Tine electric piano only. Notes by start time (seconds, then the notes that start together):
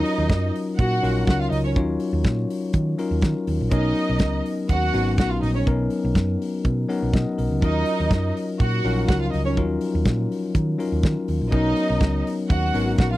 Already playing: F#3 C#4 D#4 F4 A#4
1.02 F#3 C#4 D#4 F4 A#4
1.76 F#3 C#4 D#4 F4 C#5
2.98 F#3 C#4 D#4 F4 A#4
3.71 F#3 B3 C#4 D#4 A#4
4.93 F#3 B3 C#4 D#4 F#4
5.66 F#3 B3 C#4 D#4 A#4
6.88 F#3 B3 C#4 D#4 A#4 F#5
7.14 D#5
7.38 A#4
7.62 F#3 C#4 D#4 F4 A#4
8.84 F3 C#4 D#4 F4 A#4
8.90 F#3
9.57 F#3 C#4 D#4 F4 A#4
10.78 F#3 C#4 D#4 F4 A#4
11.51 F#3 B3 C#4 D#4 A#4
12.74 F#3 B3 C#4 D#4 A#4